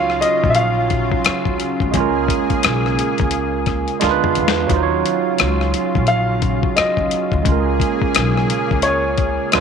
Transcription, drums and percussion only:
0.10 cross-stick
0.22 closed hi-hat
0.44 kick
0.55 closed hi-hat
0.90 kick, closed hi-hat
1.12 kick
1.25 cross-stick, closed hi-hat
1.45 kick
1.60 closed hi-hat
1.80 kick
1.94 kick, closed hi-hat
2.28 kick, closed hi-hat
2.50 kick, closed hi-hat
2.63 cross-stick, closed hi-hat
2.86 cross-stick
2.99 closed hi-hat
3.18 kick, closed hi-hat
3.31 closed hi-hat
3.66 kick, cross-stick, closed hi-hat
3.88 closed hi-hat
4.01 snare, closed hi-hat
4.24 mid tom
4.35 closed hi-hat
4.48 snare
4.69 kick, closed hi-hat
5.06 closed hi-hat
5.38 cross-stick, closed hi-hat
5.61 cross-stick
5.74 closed hi-hat
5.95 kick
6.07 closed hi-hat
6.42 kick, closed hi-hat
6.63 kick
6.77 cross-stick, closed hi-hat
6.97 kick
7.11 closed hi-hat
7.32 kick
7.45 kick, closed hi-hat
7.80 kick, closed hi-hat
8.02 kick
8.15 cross-stick, closed hi-hat
8.37 cross-stick
8.50 closed hi-hat
8.71 kick
8.82 closed hi-hat
9.18 kick, closed hi-hat
9.52 cross-stick, closed hi-hat

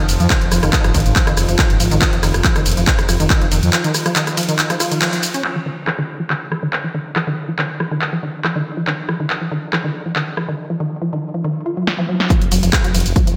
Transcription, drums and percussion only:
0.09 open hi-hat, ride, shaker
0.20 closed hi-hat, shaker
0.30 kick, clap, closed hi-hat, shaker
0.41 closed hi-hat
0.52 cross-stick, open hi-hat, ride, shaker
0.63 cross-stick, closed hi-hat, shaker
0.73 kick, clap, closed hi-hat, shaker
0.84 cross-stick, closed hi-hat, shaker
0.94 kick, open hi-hat, ride, shaker
1.00 closed hi-hat
1.06 closed hi-hat, shaker
1.16 kick, clap, closed hi-hat, shaker
1.27 cross-stick, closed hi-hat, shaker
1.37 cross-stick, open hi-hat, ride, shaker
1.49 closed hi-hat, shaker
1.59 kick, clap, open hi-hat, shaker
1.70 closed hi-hat
1.80 open hi-hat, ride, shaker
1.91 closed hi-hat, shaker
2.02 kick, clap, closed hi-hat, shaker
2.13 closed hi-hat
2.23 cross-stick, open hi-hat, ride, shaker
2.34 cross-stick, closed hi-hat, shaker
2.44 kick, clap, closed hi-hat, shaker
2.56 cross-stick, closed hi-hat, shaker
2.66 open hi-hat, ride, shaker
2.72 closed hi-hat
2.77 closed hi-hat, shaker
2.87 kick, clap, closed hi-hat, shaker
2.99 cross-stick, closed hi-hat, shaker
3.09 cross-stick, open hi-hat, ride, shaker
3.20 closed hi-hat, shaker
3.30 kick, clap, closed hi-hat, shaker
3.42 closed hi-hat
3.52 open hi-hat, ride, shaker
3.63 closed hi-hat, shaker
3.73 clap, closed hi-hat, shaker
3.84 closed hi-hat, shaker
3.95 cross-stick, open hi-hat, ride, shaker
4.06 cross-stick, closed hi-hat, shaker
4.16 clap, closed hi-hat, shaker
4.27 cross-stick, closed hi-hat, shaker
4.37 open hi-hat, ride, shaker
4.43 closed hi-hat
4.49 closed hi-hat, shaker
4.59 clap, closed hi-hat, shaker
4.70 cross-stick, closed hi-hat, shaker
4.80 cross-stick, open hi-hat, ride, shaker
4.92 closed hi-hat, shaker
5.02 clap, open hi-hat, shaker
5.13 closed hi-hat, shaker
5.23 open hi-hat, ride, shaker
5.34 closed hi-hat, shaker
5.44 clap, crash
5.87 cross-stick, clap
6.30 clap
6.52 cross-stick
6.73 clap
7.16 cross-stick, clap
7.59 clap
7.80 cross-stick
8.02 clap
8.44 cross-stick, clap
8.87 clap
9.09 cross-stick
9.30 clap
9.73 cross-stick, clap
10.16 clap
10.37 cross-stick
11.87 snare
12.20 snare
12.30 kick, closed hi-hat, shaker
12.42 closed hi-hat
12.52 open hi-hat, ride, shaker
12.63 closed hi-hat, shaker
12.73 kick, cross-stick, clap, closed hi-hat, shaker
12.84 closed hi-hat, shaker
12.95 open hi-hat, ride, shaker
13.00 closed hi-hat
13.06 closed hi-hat, shaker
13.16 kick, closed hi-hat, shaker
13.27 closed hi-hat, shaker

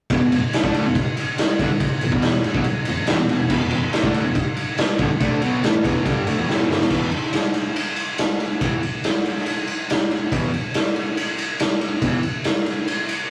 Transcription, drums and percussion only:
0.10 kick, ride
0.32 ride
0.53 snare, ride
0.64 kick
0.74 ride
0.95 kick, ride
1.17 ride
1.38 snare, ride
1.59 kick, ride
1.80 kick, ride
2.01 ride
2.12 kick
2.22 snare, ride
2.44 ride
2.54 kick
2.64 ride
2.85 ride
3.07 snare, ride
3.29 ride
3.50 kick, crash
3.71 ride
3.93 snare, ride
4.04 kick
4.14 ride
4.35 kick, ride
4.57 ride
4.78 snare, ride
4.99 kick, ride
5.20 kick, ride
5.42 ride
5.64 snare, ride
5.85 kick, ride
6.06 kick, ride
6.27 ride
6.50 snare
6.71 snare
6.81 snare
6.90 kick, crash
7.12 ride
7.23 snare
7.33 snare, ride
7.54 ride
7.76 ride
7.96 ride
8.18 snare, ride
8.40 ride
8.61 kick, ride
8.83 ride
9.04 snare, ride
9.26 ride
9.37 snare
9.46 ride
9.67 ride
9.90 snare, ride
10.11 ride
10.32 kick, ride
10.54 ride
10.74 snare, ride
10.96 ride
11.17 ride
11.38 ride
11.59 snare, ride
11.81 ride
12.02 kick, ride
12.23 ride
12.44 snare, ride
12.66 ride
12.87 ride
13.09 ride

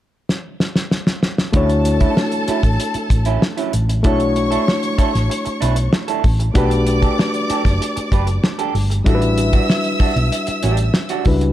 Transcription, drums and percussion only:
0.29 snare
0.60 snare
0.76 snare
0.91 snare
1.07 snare
1.23 snare
1.38 snare
1.53 kick, closed hi-hat
1.69 closed hi-hat
1.85 closed hi-hat
2.00 kick, closed hi-hat
2.17 snare
2.32 closed hi-hat
2.48 closed hi-hat
2.63 kick, closed hi-hat
2.80 closed hi-hat
2.94 closed hi-hat
3.10 kick, closed hi-hat
3.25 closed hi-hat
3.42 snare
3.58 closed hi-hat
3.73 closed hi-hat
3.89 closed hi-hat
4.04 kick, closed hi-hat
4.20 closed hi-hat
4.36 closed hi-hat
4.52 closed hi-hat
4.68 snare
4.83 closed hi-hat
4.98 kick, closed hi-hat
5.15 snare, closed hi-hat
5.31 closed hi-hat
5.46 closed hi-hat
5.62 closed hi-hat
5.76 closed hi-hat
5.93 snare
6.08 closed hi-hat
6.24 kick, open hi-hat
6.40 closed hi-hat
6.55 kick, closed hi-hat
6.71 closed hi-hat
6.87 closed hi-hat
7.02 kick, closed hi-hat
7.19 snare
7.34 closed hi-hat
7.50 closed hi-hat
7.65 kick, snare, closed hi-hat
7.82 closed hi-hat
7.97 closed hi-hat
8.12 kick, closed hi-hat
8.27 closed hi-hat
8.44 snare
8.59 closed hi-hat
8.75 open hi-hat
8.91 closed hi-hat
9.06 kick, closed hi-hat
9.22 closed hi-hat
9.38 closed hi-hat
9.53 kick, closed hi-hat
9.70 snare
9.84 closed hi-hat
10.00 kick, open hi-hat
10.17 closed hi-hat
10.32 closed hi-hat
10.47 closed hi-hat
10.63 closed hi-hat
10.77 closed hi-hat
10.94 snare
11.09 closed hi-hat
11.25 kick, open hi-hat
11.41 closed hi-hat

